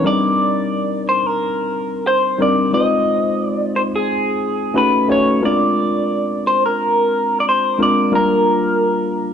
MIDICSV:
0, 0, Header, 1, 3, 480
1, 0, Start_track
1, 0, Key_signature, -3, "minor"
1, 0, Tempo, 674157
1, 19, Time_signature, 4, 2, 24, 8
1, 6647, End_track
2, 0, Start_track
2, 0, Title_t, "Clean electric guitar"
2, 0, Program_c, 0, 27
2, 49, Note_on_c, 0, 74, 88
2, 725, Note_off_c, 0, 74, 0
2, 774, Note_on_c, 0, 72, 76
2, 901, Note_off_c, 0, 72, 0
2, 901, Note_on_c, 0, 70, 86
2, 1470, Note_off_c, 0, 70, 0
2, 1476, Note_on_c, 0, 72, 83
2, 1714, Note_off_c, 0, 72, 0
2, 1723, Note_on_c, 0, 74, 83
2, 1949, Note_off_c, 0, 74, 0
2, 1952, Note_on_c, 0, 75, 88
2, 2443, Note_off_c, 0, 75, 0
2, 2443, Note_on_c, 0, 74, 88
2, 2676, Note_off_c, 0, 74, 0
2, 2679, Note_on_c, 0, 72, 77
2, 2714, Note_off_c, 0, 72, 0
2, 2817, Note_on_c, 0, 68, 87
2, 3401, Note_on_c, 0, 71, 82
2, 3405, Note_off_c, 0, 68, 0
2, 3613, Note_off_c, 0, 71, 0
2, 3643, Note_on_c, 0, 73, 84
2, 3878, Note_off_c, 0, 73, 0
2, 3883, Note_on_c, 0, 74, 97
2, 4605, Note_off_c, 0, 74, 0
2, 4608, Note_on_c, 0, 72, 86
2, 4736, Note_off_c, 0, 72, 0
2, 4740, Note_on_c, 0, 70, 90
2, 5267, Note_off_c, 0, 70, 0
2, 5270, Note_on_c, 0, 74, 70
2, 5305, Note_off_c, 0, 74, 0
2, 5331, Note_on_c, 0, 72, 92
2, 5561, Note_off_c, 0, 72, 0
2, 5572, Note_on_c, 0, 74, 89
2, 5802, Note_off_c, 0, 74, 0
2, 5806, Note_on_c, 0, 70, 94
2, 6647, Note_off_c, 0, 70, 0
2, 6647, End_track
3, 0, Start_track
3, 0, Title_t, "Tine electric piano"
3, 0, Program_c, 1, 4
3, 0, Control_c, 1, 64, 127
3, 23, Note_on_c, 1, 55, 71
3, 26, Note_on_c, 1, 60, 58
3, 28, Control_c, 1, 64, 0
3, 28, Note_on_c, 1, 62, 59
3, 29, Note_on_c, 1, 63, 58
3, 32, Note_on_c, 1, 70, 69
3, 160, Control_c, 1, 64, 127
3, 787, Note_off_c, 1, 55, 0
3, 788, Note_off_c, 1, 60, 0
3, 789, Note_off_c, 1, 62, 0
3, 790, Note_off_c, 1, 63, 0
3, 791, Note_off_c, 1, 70, 0
3, 1697, Note_on_c, 1, 55, 69
3, 1700, Note_on_c, 1, 60, 70
3, 1706, Note_on_c, 1, 62, 62
3, 1707, Note_on_c, 1, 63, 65
3, 1711, Note_on_c, 1, 70, 80
3, 1896, Note_off_c, 1, 55, 0
3, 1897, Note_off_c, 1, 60, 0
3, 1900, Note_off_c, 1, 62, 0
3, 1900, Note_off_c, 1, 63, 0
3, 1902, Note_off_c, 1, 70, 0
3, 1940, Note_on_c, 1, 56, 71
3, 1943, Note_on_c, 1, 60, 56
3, 1946, Control_c, 1, 64, 0
3, 1946, Note_on_c, 1, 63, 61
3, 1948, Note_on_c, 1, 65, 65
3, 1951, Note_on_c, 1, 71, 63
3, 1996, Note_on_c, 1, 72, 73
3, 1998, Note_off_c, 1, 71, 0
3, 2088, Control_c, 1, 64, 127
3, 2706, Note_off_c, 1, 56, 0
3, 2707, Note_off_c, 1, 60, 0
3, 2708, Note_off_c, 1, 63, 0
3, 2709, Note_off_c, 1, 65, 0
3, 2734, Note_off_c, 1, 72, 0
3, 3374, Note_on_c, 1, 57, 75
3, 3376, Note_on_c, 1, 61, 72
3, 3378, Note_on_c, 1, 63, 72
3, 3383, Note_on_c, 1, 66, 75
3, 3387, Note_on_c, 1, 71, 78
3, 3389, Control_c, 1, 64, 0
3, 3530, Control_c, 1, 64, 127
3, 3576, Note_off_c, 1, 57, 0
3, 3577, Note_off_c, 1, 61, 0
3, 3578, Note_off_c, 1, 63, 0
3, 3580, Note_off_c, 1, 66, 0
3, 3582, Note_off_c, 1, 71, 0
3, 3616, Note_on_c, 1, 57, 71
3, 3620, Note_on_c, 1, 63, 67
3, 3621, Note_on_c, 1, 61, 67
3, 3625, Note_on_c, 1, 66, 65
3, 3628, Note_on_c, 1, 73, 85
3, 3815, Note_off_c, 1, 57, 0
3, 3817, Note_off_c, 1, 63, 0
3, 3818, Note_off_c, 1, 61, 0
3, 3820, Note_off_c, 1, 66, 0
3, 3821, Note_off_c, 1, 73, 0
3, 3852, Note_on_c, 1, 56, 66
3, 3855, Note_on_c, 1, 60, 60
3, 3859, Note_on_c, 1, 62, 68
3, 3860, Note_on_c, 1, 65, 64
3, 3865, Note_on_c, 1, 70, 77
3, 3868, Control_c, 1, 64, 0
3, 3992, Control_c, 1, 64, 127
3, 4622, Note_off_c, 1, 56, 0
3, 4623, Note_off_c, 1, 60, 0
3, 4625, Note_off_c, 1, 62, 0
3, 4626, Note_off_c, 1, 65, 0
3, 4628, Note_off_c, 1, 70, 0
3, 5538, Note_on_c, 1, 56, 73
3, 5542, Note_on_c, 1, 60, 64
3, 5545, Note_on_c, 1, 62, 66
3, 5548, Note_on_c, 1, 65, 65
3, 5550, Note_on_c, 1, 70, 85
3, 5736, Note_off_c, 1, 56, 0
3, 5738, Note_off_c, 1, 60, 0
3, 5740, Note_off_c, 1, 62, 0
3, 5741, Note_off_c, 1, 65, 0
3, 5742, Note_off_c, 1, 70, 0
3, 5779, Note_on_c, 1, 55, 70
3, 5779, Note_on_c, 1, 58, 66
3, 5782, Note_on_c, 1, 62, 59
3, 5786, Control_c, 1, 64, 0
3, 5787, Note_on_c, 1, 65, 66
3, 5787, Note_on_c, 1, 70, 81
3, 5917, Control_c, 1, 64, 127
3, 6545, Note_off_c, 1, 55, 0
3, 6545, Note_off_c, 1, 58, 0
3, 6546, Note_off_c, 1, 62, 0
3, 6549, Note_off_c, 1, 65, 0
3, 6549, Note_off_c, 1, 70, 0
3, 6647, End_track
0, 0, End_of_file